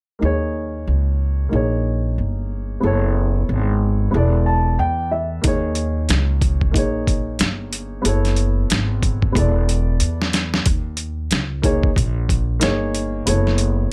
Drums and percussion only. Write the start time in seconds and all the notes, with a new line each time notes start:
5.44 kick, closed hi-hat
5.75 closed hi-hat
6.09 snare, closed hi-hat
6.42 kick, closed hi-hat
6.61 kick
6.74 kick, closed hi-hat
7.07 kick, closed hi-hat
7.39 snare, closed hi-hat
7.73 closed hi-hat
8.05 closed hi-hat
8.25 snare, closed hi-hat
8.36 closed hi-hat
8.70 snare, closed hi-hat
9.03 kick, closed hi-hat
9.22 kick
9.35 kick, closed hi-hat
9.69 closed hi-hat
10.00 closed hi-hat
10.22 snare
10.33 snare, closed hi-hat
10.54 snare
10.66 kick, closed hi-hat
10.97 closed hi-hat
11.31 snare, closed hi-hat
11.63 kick, closed hi-hat
11.83 kick
11.96 kick, closed hi-hat
12.29 kick, closed hi-hat
12.61 snare, closed hi-hat
12.95 closed hi-hat
13.27 closed hi-hat
13.47 snare
13.58 closed hi-hat